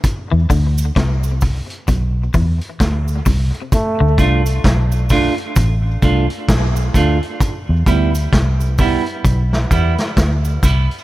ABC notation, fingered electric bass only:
X:1
M:4/4
L:1/16
Q:"Swing 16ths" 1/4=65
K:Ephr
V:1 name="Fingered electric bass" clef=bass
z E,, D,,2 C,,3 z B,,,2 E,, z D,,2 C,, z | z D,, C,,2 B,,,3 z A,,,2 C,, z B,,,2 D,, z | z E,, D,,2 C,,3 z B,,,2 E,, z D,,2 C,, z |]